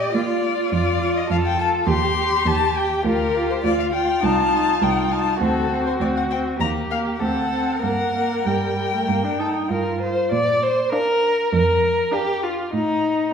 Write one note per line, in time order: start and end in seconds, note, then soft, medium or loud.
0.00 0.10 A#2 medium
0.00 0.13 G4 soft
0.00 0.13 D5 medium
0.00 0.15 D#5 medium
0.14 0.69 A#3 soft
0.14 0.71 F4 soft
0.14 1.29 F4 soft
0.14 0.72 D5 medium
0.72 1.21 F2 medium
0.72 1.01 F4 soft
0.72 1.19 D5 medium
1.01 1.30 F4 soft
1.17 1.30 D#5 medium
1.30 1.78 F2 soft
1.30 1.58 F4 soft
1.30 1.89 A4 soft
1.30 1.37 F5 medium
1.45 1.59 G5 medium
1.59 1.87 F4 soft
1.59 1.68 A5 medium
1.87 2.36 D#2 medium
1.87 3.05 G4 soft
1.87 2.16 G4 soft
1.87 2.49 C6 medium
2.17 2.46 G4 soft
2.46 2.95 D#2 medium
2.46 2.75 G4 soft
2.46 2.78 A5 medium
2.76 3.05 G4 soft
2.76 3.05 G5 medium
3.05 3.54 D2 soft
3.05 3.34 F4 soft
3.05 3.66 G4 soft
3.05 3.52 A#4 medium
3.35 3.63 F4 soft
3.51 3.63 C5 soft
3.64 4.14 D2 soft
3.64 3.93 F4 soft
3.64 5.41 F4 soft
3.64 3.78 D5 medium
3.80 3.85 F5 soft
3.93 4.22 F4 soft
3.93 4.25 G5 medium
4.23 4.72 C2 soft
4.23 4.52 D#4 soft
4.23 4.84 A5 medium
4.53 4.81 D#4 soft
4.81 5.31 C2 soft
4.81 5.10 D#4 soft
4.81 5.13 G5 medium
5.11 5.40 D#4 soft
5.11 5.40 A5 medium
5.40 5.91 D2 soft
5.40 5.70 C4 soft
5.40 6.57 F#4 soft
5.40 5.84 A4 soft
5.70 5.99 C4 soft
5.87 5.92 C5 soft
6.00 6.50 D2 soft
6.00 6.29 C4 soft
6.00 6.07 D5 soft
6.17 6.23 F#5 soft
6.29 6.59 C4 soft
6.29 6.39 G5 medium
6.59 7.10 D#2 soft
6.59 6.89 A#3 soft
6.59 7.22 G4 soft
6.59 6.68 A#5 soft
6.90 7.20 A#3 soft
6.90 6.99 F5 soft
7.20 7.73 D2 soft
7.20 7.51 C4 soft
7.20 7.83 A4 soft
7.20 7.81 F#5 soft
7.52 7.82 C4 soft
7.82 8.36 G2 soft
7.82 8.13 A#3 soft
7.82 9.36 A#4 soft
7.82 8.48 F#5 medium
8.15 8.45 A#3 soft
8.46 8.98 G2 soft
8.46 8.95 G3 soft
8.46 9.70 G5 soft
8.94 9.10 A3 soft
9.08 9.60 G2 soft
9.08 9.26 A#3 soft
9.24 9.40 D4 soft
9.39 9.70 D#4 soft
9.39 9.47 A4 soft
9.69 10.22 G2 soft
9.69 10.31 F4 soft
9.69 10.00 A#4 soft
10.01 10.31 C5 soft
10.32 10.80 A#2 soft
10.32 10.64 D5 medium
10.63 10.92 C5 medium
10.92 11.37 D4 soft
10.92 11.52 A#4 medium
10.92 11.38 F5 soft
11.53 12.00 F2 soft
11.53 12.14 A#4 medium
12.12 12.57 D4 soft
12.12 12.45 G4 medium
12.12 12.57 F5 soft
12.44 12.73 F4 soft
12.73 13.20 A2 soft
12.73 13.32 D#4 soft